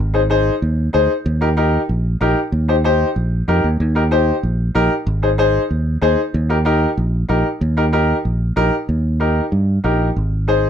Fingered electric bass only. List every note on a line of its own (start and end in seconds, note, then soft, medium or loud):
0.00 0.49 G#1 loud
0.62 0.88 D#2 medium
0.94 1.07 D2 medium
1.26 1.77 D#2 loud
1.89 2.15 A#1 medium
2.21 2.34 A#1 medium
2.52 3.03 D#2 loud
3.16 3.42 A#1 medium
3.48 3.62 F2 medium
3.64 3.78 D#2 medium
3.80 4.31 D#2 loud
4.43 4.69 A#1 medium
4.75 4.88 A#1 medium
5.07 5.58 G#1 loud
5.71 5.96 D#2 medium
6.02 6.15 D#2 loud
6.34 6.85 D#2 loud
6.97 7.23 A#1 medium
7.29 7.42 A#1 medium
7.61 8.12 D#2 loud
8.25 8.50 A#1 medium
8.57 8.69 A#1 medium
8.89 9.40 D#2 loud
9.52 9.78 G2 medium
9.84 10.10 A#1 medium
10.16 10.67 G#1 medium